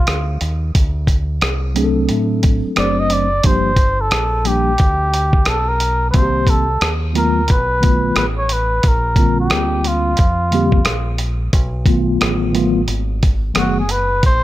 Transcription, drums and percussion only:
0.07 cross-stick, closed hi-hat
0.41 closed hi-hat
0.75 kick, closed hi-hat
1.07 kick, closed hi-hat
1.41 cross-stick, closed hi-hat
1.76 closed hi-hat
2.09 closed hi-hat
2.43 kick, closed hi-hat
2.76 cross-stick, closed hi-hat
3.10 closed hi-hat
3.43 kick, closed hi-hat
3.76 kick, closed hi-hat
4.11 cross-stick, closed hi-hat
4.45 closed hi-hat
4.78 kick, closed hi-hat
5.14 closed hi-hat
5.33 kick
5.45 cross-stick, closed hi-hat
5.80 closed hi-hat
6.14 kick, closed hi-hat
6.47 kick, closed hi-hat
6.81 cross-stick, closed hi-hat
7.15 closed hi-hat
7.48 kick, closed hi-hat
7.83 kick, closed hi-hat
8.16 cross-stick, closed hi-hat
8.49 closed hi-hat
8.83 kick, closed hi-hat
9.16 kick, closed hi-hat
9.50 cross-stick, closed hi-hat
9.84 closed hi-hat
10.17 kick, closed hi-hat
10.52 closed hi-hat
10.72 kick
10.85 cross-stick, closed hi-hat
11.18 closed hi-hat
11.53 kick, closed hi-hat
11.86 kick, closed hi-hat
12.21 cross-stick, closed hi-hat
12.55 closed hi-hat
12.88 closed hi-hat
13.23 kick, closed hi-hat
13.55 cross-stick, closed hi-hat
13.89 closed hi-hat
14.23 kick, closed hi-hat

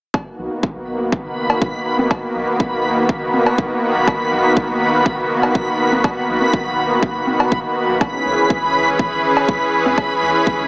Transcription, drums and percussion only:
0.14 kick, cowbell
0.63 kick
1.12 kick
1.50 cowbell
1.62 kick
1.99 high conga
2.11 kick, cowbell
2.60 kick
3.09 kick
3.34 high conga
3.46 cowbell
3.58 kick
4.08 kick, cowbell
4.57 kick
5.06 kick
5.43 cowbell
5.55 kick
5.92 high conga
6.04 kick, cowbell
6.42 high conga
6.53 kick
7.03 kick
7.27 high conga
7.40 cowbell
7.52 kick
8.01 kick, cowbell
8.50 kick
8.99 kick
9.37 cowbell
9.49 kick
9.86 high conga
9.98 kick, cowbell
10.47 kick

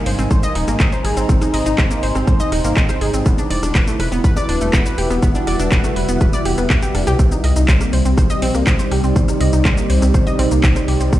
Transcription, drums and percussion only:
0.06 open hi-hat
0.18 shaker
0.31 kick, cross-stick, shaker
0.43 shaker
0.55 open hi-hat
0.68 cross-stick, shaker
0.80 kick, clap, shaker
0.92 shaker
1.05 cross-stick, open hi-hat
1.17 shaker
1.29 kick, shaker
1.42 cross-stick, shaker
1.54 open hi-hat
1.66 shaker
1.78 kick, cross-stick, clap, shaker
1.91 shaker
2.03 open hi-hat
2.15 cross-stick, shaker
2.27 kick, shaker
2.40 shaker
2.52 cross-stick, open hi-hat
2.64 shaker
2.77 kick, clap, shaker
2.89 cross-stick, shaker
3.01 open hi-hat
3.14 shaker
3.26 kick, cross-stick, shaker
3.38 shaker
3.50 open hi-hat
3.63 cross-stick, shaker
3.75 kick, clap, shaker
3.87 shaker
4.00 cross-stick, open hi-hat
4.12 shaker
4.24 kick, shaker
4.37 cross-stick, shaker
4.49 open hi-hat
4.61 shaker
4.73 kick, cross-stick, clap, shaker
4.86 shaker
4.98 open hi-hat
5.10 cross-stick, shaker
5.23 kick, shaker
5.35 shaker
5.47 cross-stick, open hi-hat
5.60 shaker
5.72 kick, clap, shaker
5.84 cross-stick, shaker
5.96 open hi-hat
6.09 shaker
6.21 kick, cross-stick, shaker
6.33 shaker
6.45 open hi-hat
6.58 cross-stick, shaker
6.70 kick, clap, shaker
6.82 shaker
6.95 cross-stick, open hi-hat
7.07 shaker
7.19 kick, shaker
7.32 shaker
7.44 cross-stick, open hi-hat
7.56 shaker
7.68 kick, clap, shaker
7.81 cross-stick, shaker
7.93 open hi-hat
8.05 shaker
8.18 kick, cross-stick, shaker
8.30 shaker
8.42 open hi-hat
8.55 cross-stick, shaker
8.67 kick, clap, shaker
8.79 shaker
8.91 cross-stick, open hi-hat
9.04 shaker
9.16 kick, shaker
9.28 cross-stick, shaker
9.41 open hi-hat
9.53 shaker
9.65 kick, cross-stick, clap, shaker
9.77 shaker
9.90 open hi-hat
10.02 cross-stick, shaker
10.14 kick, shaker
10.27 shaker
10.39 cross-stick, open hi-hat
10.51 shaker
10.63 kick, clap, shaker
10.76 cross-stick, shaker
10.88 open hi-hat
11.01 shaker
11.13 kick, cross-stick, shaker

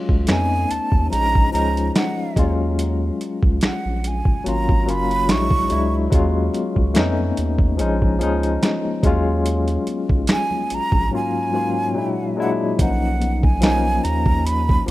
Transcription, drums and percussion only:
0.09 kick
0.27 finger snap, snare, closed hi-hat
0.71 closed hi-hat
0.92 kick
1.13 closed hi-hat
1.35 kick
1.55 closed hi-hat
1.77 closed hi-hat
1.96 finger snap, snare, closed hi-hat
2.36 kick, closed hi-hat
2.79 closed hi-hat
3.21 closed hi-hat
3.43 kick
3.61 finger snap, snare, closed hi-hat
4.04 closed hi-hat
4.25 kick
4.46 closed hi-hat
4.69 kick
4.89 closed hi-hat
5.11 closed hi-hat
5.29 finger snap, snare, closed hi-hat
5.50 kick
5.70 closed hi-hat
6.12 kick, closed hi-hat
6.54 closed hi-hat, muted conga, high conga
6.76 kick
6.95 finger snap, snare, closed hi-hat
7.17 high conga, low conga
7.36 closed hi-hat, muted conga
7.59 kick, low conga
7.79 closed hi-hat, muted conga
8.02 kick
8.19 closed hi-hat, muted conga, high conga
8.43 closed hi-hat
8.62 finger snap, snare, closed hi-hat, high conga
8.85 high conga
9.03 kick, closed hi-hat, muted conga, low conga
9.46 closed hi-hat, muted conga
9.68 closed hi-hat
9.87 closed hi-hat, high conga
10.09 kick
10.27 finger snap, snare, closed hi-hat, muted conga
10.51 high conga, low conga
10.70 closed hi-hat, muted conga
10.92 kick, low conga
12.79 kick, closed hi-hat, muted conga
13.20 closed hi-hat, high conga
13.43 kick
13.62 finger snap, snare, closed hi-hat, muted conga
13.84 high conga
14.03 closed hi-hat, muted conga
14.26 kick, low conga
14.47 closed hi-hat
14.69 kick
14.86 muted conga, high conga

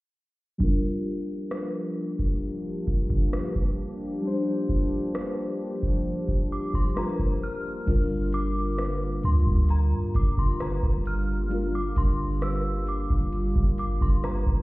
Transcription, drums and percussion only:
0.60 kick
1.51 cross-stick
2.19 kick
2.87 kick
3.10 kick
3.33 cross-stick
3.56 kick
4.69 kick
5.15 cross-stick
5.83 kick
6.28 kick
6.74 kick
6.97 cross-stick
7.19 kick
7.87 kick, closed hi-hat, crash
8.33 closed hi-hat
8.78 cross-stick, closed hi-hat
9.23 closed hi-hat
9.46 kick
9.69 closed hi-hat
10.14 kick, closed hi-hat
10.37 kick
10.60 cross-stick, closed hi-hat
10.83 kick
11.06 closed hi-hat
11.51 closed hi-hat
11.96 kick, closed hi-hat
12.42 cross-stick, closed hi-hat
12.87 closed hi-hat
13.10 kick
13.32 closed hi-hat
13.55 kick
13.78 closed hi-hat
14.01 kick
14.23 cross-stick, closed hi-hat
14.46 kick

